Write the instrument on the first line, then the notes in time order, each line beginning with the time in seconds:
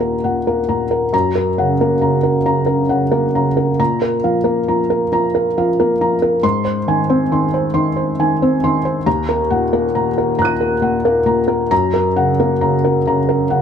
felt piano
Already playing: D#2 A#2 A#3 F#5 A#5
0.00 A#4
0.24 A#2 F#5
0.47 A#3 A#4
0.69 A#2 A#5
0.91 A#4
1.13 F#2 A#5
1.35 A#4
1.58 C#3 F#5
1.81 A#3 A#4
2.01 C#3 A#5
2.23 A#4
2.45 C#3 A#5
2.66 A#4
2.89 C#3 F#5
3.12 A#3 A#4
3.35 C#3 A#5
3.57 A#4
3.79 A#2 A#5
4.02 A#4
4.24 F3 F5
4.44 A#3 A#4
4.68 F3 A#5
4.90 A#4
5.12 F3 A#5
5.35 A#4
5.58 F3 F5
5.80 A#3 A#4
6.01 F3 A#5
6.22 A#4
6.43 G#2 C6
6.65 C5
6.88 D#3 G#5
7.10 C4 C5
7.32 D#3 C6
7.54 C5
7.74 D#3 C6
7.96 C5
8.19 D#3 G#5
8.42 C4 C5
8.64 D#3 C6
8.85 C5
9.06 D#2 A#5
9.29 A#4
9.50 A#2 F#5
9.73 A#3 A#4
9.95 A#2 A#5
10.18 A#4
10.39 A#2 A#5 F#6
10.45 D#7
10.61 A#4
10.82 A#2 F#5
11.05 A#3 A#4
11.26 A#2 A#5
11.48 A#4
11.71 F#2 A#5
11.94 A#4
12.16 C#3 F#5
12.39 A#3 A#4
12.61 C#3 A#5
12.84 A#4
13.07 C#3 A#5
13.29 A#4
13.50 C#3 F#5